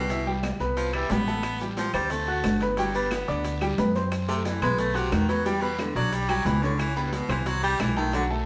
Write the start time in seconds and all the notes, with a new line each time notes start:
Already playing: C2 B2
0.09 E3 E4 E5, high bongo, high conga, high timbale, long guiro, maracas
0.27 G3 G4 G5, high bongo, high conga
0.43 high bongo, high conga, high timbale, low timbale, short guiro, claves, maracas
0.60 C2 B3 B4 B5, high bongo, short guiro, maracas
0.77 F3, high bongo, high conga, high timbale, long guiro, maracas
0.93 E3 G3 E4 E5, high bongo, high conga, high timbale, claves
1.10 A1 G3 B3 G4 G5, high bongo, low bongo, high conga, low timbale, short guiro, maracas
1.27 A3 A4 A5, high conga, short guiro, maracas
1.43 high bongo, high conga, high timbale, long guiro, claves, maracas
1.60 G3 G4 G5, high conga, maracas
1.77 F3, high bongo, high conga, high timbale, low timbale, short guiro, maracas
1.93 D2 G3 C4 C5 C6, high bongo, high conga, low conga, high timbale, short guiro, claves, maracas
2.10 A3, high bongo, high conga, low conga, high timbale, long guiro, maracas
2.28 F#4 F#5 F#6, high bongo, high conga
2.44 G1, high bongo, low bongo, high conga, high timbale, low timbale, short guiro, claves, maracas
2.60 B3 B4 B5, high bongo, high conga, high timbale, short guiro, maracas
2.77 F#3 G3 G4 G5, high bongo, high conga, high timbale, long guiro, maracas
2.94 G3 B3 B4 B5, high bongo, high conga, maracas
3.11 B3, high bongo, high conga, high timbale, low timbale, short guiro, claves, maracas
3.28 D2 D4 D5 D6, high bongo, short guiro, maracas
3.44 high bongo, high conga, high timbale, long guiro, maracas
3.61 G3 G4 G5, high bongo, high timbale, claves, maracas
3.78 F#2 B3 B4 B5, high bongo, low bongo, high conga, low timbale, short guiro, maracas
3.95 C4 C5 C6, high conga, short guiro, maracas
4.12 high bongo, high conga, high timbale, long guiro, claves, maracas
4.28 C3 A3 A4 A5, maracas
4.45 E3, high bongo, high conga, high timbale, low timbale, short guiro, maracas
4.62 B1 G#3 B3 B4 B5, high bongo, high conga, low conga, high timbale, short guiro, claves, maracas
4.78 A3, high bongo, high conga, high timbale, long guiro, maracas
4.95 C3 F#4 F#5 F#6, high bongo, high conga, maracas
5.12 E2 D#3, high bongo, low bongo, high conga, high timbale, low timbale, short guiro, claves, maracas
5.28 F#3 B3 B4 B5, high bongo, high conga, high timbale, short guiro, maracas
5.45 G3 G4 G5, high bongo, high timbale, long guiro, maracas
5.62 B2 B3 B4 B5, high bongo, high conga
5.78 D3, high bongo, high conga, high timbale, low timbale, short guiro, claves, maracas
5.95 B1 F#3 D4 D5 D6, high bongo, short guiro, maracas
6.12 G3, high bongo, high timbale, long guiro, maracas
6.29 F#3 G3 G4 G5, high bongo, high conga, high timbale, claves, maracas
6.45 C#2 E3 B3 B4 B5, high bongo, low bongo, high conga, low timbale, short guiro, maracas
6.62 D3 C#4 C#5 C#6, high conga, short guiro, maracas
6.79 E3, high bongo, high conga, high timbale, long guiro, claves, maracas
6.96 G2 B3 B4 B5, high conga, maracas
7.13 B2, high bongo, high conga, high timbale, low timbale, short guiro, maracas
7.29 C2 E3 C4 C5 C6, high bongo, high conga, low conga, high timbale, short guiro, claves, maracas
7.46 F#3, high bongo, high conga, low conga, high timbale, long guiro, maracas
7.63 G3 G4 G5 G6, high bongo, high conga, maracas
7.80 B1 E3, high bongo, low bongo, high conga, high timbale, low timbale, short guiro, claves, maracas
7.96 D#3 A3 A4 A5, high bongo, high conga, high timbale, short guiro, maracas
8.13 D3 F#3 F#4 F#5, high bongo, high conga, high timbale, long guiro, maracas
8.30 A3 A4 A5, high bongo, high conga